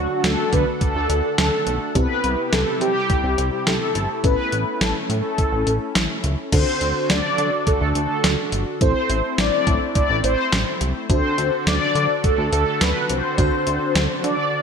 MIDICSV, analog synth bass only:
0, 0, Header, 1, 2, 480
1, 0, Start_track
1, 0, Tempo, 571429
1, 1641, Time_signature, 4, 2, 24, 8
1, 12282, End_track
2, 0, Start_track
2, 0, Title_t, "Analog synth bass"
2, 0, Program_c, 0, 38
2, 201, Note_on_c, 0, 38, 102
2, 303, Note_off_c, 0, 38, 0
2, 443, Note_on_c, 0, 50, 96
2, 544, Note_off_c, 0, 50, 0
2, 801, Note_on_c, 0, 38, 99
2, 903, Note_off_c, 0, 38, 0
2, 921, Note_on_c, 0, 38, 99
2, 1023, Note_off_c, 0, 38, 0
2, 1161, Note_on_c, 0, 38, 102
2, 1263, Note_off_c, 0, 38, 0
2, 1401, Note_on_c, 0, 35, 92
2, 1503, Note_off_c, 0, 35, 0
2, 1641, Note_on_c, 0, 36, 112
2, 1743, Note_off_c, 0, 36, 0
2, 1881, Note_on_c, 0, 36, 98
2, 1983, Note_off_c, 0, 36, 0
2, 2121, Note_on_c, 0, 36, 98
2, 2223, Note_off_c, 0, 36, 0
2, 2361, Note_on_c, 0, 48, 91
2, 2463, Note_off_c, 0, 48, 0
2, 2721, Note_on_c, 0, 36, 91
2, 2823, Note_off_c, 0, 36, 0
2, 2841, Note_on_c, 0, 36, 92
2, 2943, Note_off_c, 0, 36, 0
2, 3081, Note_on_c, 0, 36, 94
2, 3183, Note_off_c, 0, 36, 0
2, 3321, Note_on_c, 0, 31, 84
2, 3423, Note_off_c, 0, 31, 0
2, 3561, Note_on_c, 0, 33, 104
2, 3663, Note_off_c, 0, 33, 0
2, 3801, Note_on_c, 0, 33, 90
2, 3903, Note_off_c, 0, 33, 0
2, 4041, Note_on_c, 0, 33, 103
2, 4143, Note_off_c, 0, 33, 0
2, 4281, Note_on_c, 0, 45, 92
2, 4383, Note_off_c, 0, 45, 0
2, 4641, Note_on_c, 0, 33, 99
2, 4743, Note_off_c, 0, 33, 0
2, 4761, Note_on_c, 0, 33, 102
2, 4863, Note_off_c, 0, 33, 0
2, 5001, Note_on_c, 0, 33, 97
2, 5103, Note_off_c, 0, 33, 0
2, 5241, Note_on_c, 0, 37, 92
2, 5343, Note_off_c, 0, 37, 0
2, 5481, Note_on_c, 0, 38, 107
2, 5583, Note_off_c, 0, 38, 0
2, 5721, Note_on_c, 0, 38, 99
2, 5823, Note_off_c, 0, 38, 0
2, 5961, Note_on_c, 0, 38, 101
2, 6063, Note_off_c, 0, 38, 0
2, 6201, Note_on_c, 0, 50, 93
2, 6303, Note_off_c, 0, 50, 0
2, 6561, Note_on_c, 0, 38, 111
2, 6663, Note_off_c, 0, 38, 0
2, 6681, Note_on_c, 0, 38, 94
2, 6783, Note_off_c, 0, 38, 0
2, 6921, Note_on_c, 0, 38, 105
2, 7023, Note_off_c, 0, 38, 0
2, 7161, Note_on_c, 0, 31, 94
2, 7263, Note_off_c, 0, 31, 0
2, 7401, Note_on_c, 0, 33, 102
2, 7503, Note_off_c, 0, 33, 0
2, 7641, Note_on_c, 0, 33, 104
2, 7743, Note_off_c, 0, 33, 0
2, 7881, Note_on_c, 0, 33, 106
2, 7983, Note_off_c, 0, 33, 0
2, 8123, Note_on_c, 0, 45, 97
2, 8224, Note_off_c, 0, 45, 0
2, 8481, Note_on_c, 0, 33, 105
2, 8583, Note_off_c, 0, 33, 0
2, 8601, Note_on_c, 0, 33, 102
2, 8703, Note_off_c, 0, 33, 0
2, 8841, Note_on_c, 0, 33, 100
2, 8943, Note_off_c, 0, 33, 0
2, 9081, Note_on_c, 0, 36, 97
2, 9183, Note_off_c, 0, 36, 0
2, 9321, Note_on_c, 0, 38, 113
2, 9423, Note_off_c, 0, 38, 0
2, 9561, Note_on_c, 0, 38, 94
2, 9663, Note_off_c, 0, 38, 0
2, 9801, Note_on_c, 0, 38, 104
2, 9903, Note_off_c, 0, 38, 0
2, 10041, Note_on_c, 0, 50, 96
2, 10143, Note_off_c, 0, 50, 0
2, 10401, Note_on_c, 0, 38, 96
2, 10503, Note_off_c, 0, 38, 0
2, 10520, Note_on_c, 0, 38, 103
2, 10623, Note_off_c, 0, 38, 0
2, 10761, Note_on_c, 0, 38, 106
2, 10863, Note_off_c, 0, 38, 0
2, 11000, Note_on_c, 0, 36, 97
2, 11103, Note_off_c, 0, 36, 0
2, 11241, Note_on_c, 0, 38, 116
2, 11343, Note_off_c, 0, 38, 0
2, 11481, Note_on_c, 0, 38, 100
2, 11583, Note_off_c, 0, 38, 0
2, 11721, Note_on_c, 0, 38, 105
2, 11823, Note_off_c, 0, 38, 0
2, 11961, Note_on_c, 0, 50, 100
2, 12063, Note_off_c, 0, 50, 0
2, 12282, End_track
0, 0, End_of_file